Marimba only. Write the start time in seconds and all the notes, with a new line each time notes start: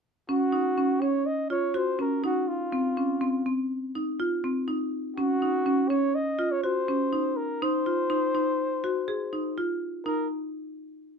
0.29 C#4
0.52 D#4
0.77 C#4
1.02 C#4
1.50 F4
1.74 F#4
1.99 C#4
2.24 D#4
2.72 C4
2.97 C#4
3.21 C4
3.46 C4
3.95 D#4
4.20 F4
4.44 C4
4.68 D#4
5.18 C#4
5.42 D#4
5.66 C#4
5.90 C#4
6.39 F4
6.64 F#4
6.88 C#4
7.13 D#4
7.62 D#4
7.86 F4
8.10 D#4
8.35 D#4
8.84 F#4
9.08 G#4
9.33 D#4
9.58 F4
10.06 D#4